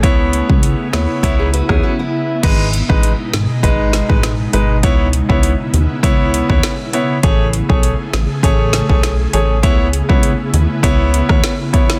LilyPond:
<<
  \new Staff \with { instrumentName = "Grand piano" } { \time 4/4 \key cis \minor \tempo 4 = 100 <b e' cis''>4. <b e' cis''>8 <b e' cis''>16 r8 <b e' cis''>16 r4 | <gis dis' b'>16 r8 <gis dis' b'>16 r4 <gis dis' b'>8. <gis dis' b'>16 r8 <gis dis' b'>16 r16 | <b e' cis''>16 r8 <b e' cis''>16 r4 <b e' cis''>8. <b e' cis''>16 r8 <b e' cis''>16 r16 | <a gis' cis''>16 r8 <a gis' cis''>16 r4 <a gis' cis''>8. <a gis' cis''>16 r8 <a gis' cis''>16 r16 |
<b e' cis''>16 r8 <b e' cis''>16 r4 <b e' cis''>8. <b e' cis''>16 r8 <b e' cis''>16 r16 | }
  \new Staff \with { instrumentName = "Steel-string acoustic guitar" } { \time 4/4 \key cis \minor r2 <b e'>16 <dis' gis'>16 <fis' b'>16 <dis' gis'>16 <cis' fis'>16 <b e'>8. | r1 | r1 | r1 |
r1 | }
  \new Staff \with { instrumentName = "Ambient pad" } { \time 4/4 \key cis \minor <cis b e'>1 | <b, gis dis'>1 | <cis b e'>1 | <cis a gis'>1 |
<cis b e'>1 | }
  \new Staff \with { instrumentName = "Analog synth bass" } { \clef bass \time 4/4 \key cis \minor cis,8. cis,8 r16 dis,16 r16 cis,8. dis,16 r4 | gis,,8. a,,8 r16 gis,,16 r16 gis,,8. a,,8. gis,,8 | cis,8. cis,8 r16 dis,16 r16 cis,8. dis,16 r4 | a,,8. b,,8 r16 a,,16 r16 a,,8. b,,8. a,,8 |
cis,8. cis,8 r16 dis,16 r16 cis,8. dis,16 r4 | }
  \new DrumStaff \with { instrumentName = "Drums" } \drummode { \time 4/4 <hh bd>8 hh16 bd16 hh8 <hh sn>8 <hh bd>8 hh16 <bd ss>16 r4 | <cymc hh bd>8 hh16 bd16 hh8 <hh sn>8 <hh bd>8 <hh sn>16 bd16 <hh sn>8 hh8 | <hh bd>8 hh16 bd16 hh8 hh8 <hh bd>8 hh16 bd16 <hh sn>8 hh8 | <hh bd>8 hh16 bd16 hh8 <hh sn>8 <hh bd>8 <hh sn>16 bd16 <hh sn>8 hh8 |
<hh bd>8 hh16 bd16 hh8 hh8 <hh bd>8 hh16 <bd ss>16 <hh sn>8 <hh bd>16 sn16 | }
>>